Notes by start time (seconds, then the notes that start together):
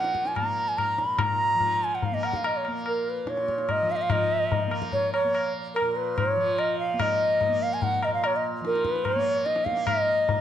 Already playing: A#2 F3 A#3 F#5
0.04 tabla te
0.15 tabla ke
0.25 G#5, tabla te
0.36 A#5, tabla na, tabla ge
0.41 A#3
0.68 G#5
0.77 A#5, tabla na, tabla ge
0.97 A#2 B5, tabla te
1.19 A#5, tabla na, tabla ge
1.54 F3
1.60 tabla tin, tabla ge
1.84 G#5
1.95 F#5
2.02 F5, tabla tin, tabla ge
2.11 A#3 D#5
2.23 F#5, tabla na
2.33 F5, tabla ke
2.44 D#5, tabla na
2.56 C#5
2.65 A#3, tabla na
2.86 A#4, tabla na
3.09 B4
3.25 A#2, tabla te
3.29 C#5
3.37 tabla te
3.48 tabla ke
3.58 tabla te
3.69 D#5, tabla na, tabla ge
3.82 F3
3.90 F5, tabla te
3.96 D#5
4.02 F5
4.10 F3 D#5, tabla na, tabla ge
4.52 tabla tin, tabla ge
4.67 A#3
4.71 tabla na
4.82 tabla ke
4.92 C#5, tabla tin, tabla ge
5.13 C#5, tabla na
5.25 A#3
5.35 tabla na
5.74 A#4, tabla na
5.81 A#2
5.96 B4
6.17 C#5, tabla na, tabla ge
6.36 F3
6.58 D#5, tabla na
6.79 F5
6.94 A#3
7.00 D#5, tabla na, tabla ge
7.41 tabla tin, tabla ge
7.49 A#3
7.62 F5
7.73 G#5
7.82 F#5, tabla tin, tabla ge
8.03 A#2 D#5, tabla na
8.14 F5
8.24 C#5, tabla na
8.36 D#5
8.61 F3, tabla te
8.66 A#4
8.75 tabla te
8.85 B4, tabla ke
8.96 tabla te
9.05 C#5, tabla na, tabla ge
9.16 A#3
9.45 D#5, tabla te
9.56 tabla te
9.65 F5, tabla ke
9.71 A#3
9.77 tabla te
9.86 D#5, tabla na, tabla ge
10.29 A#2, tabla tin, tabla ge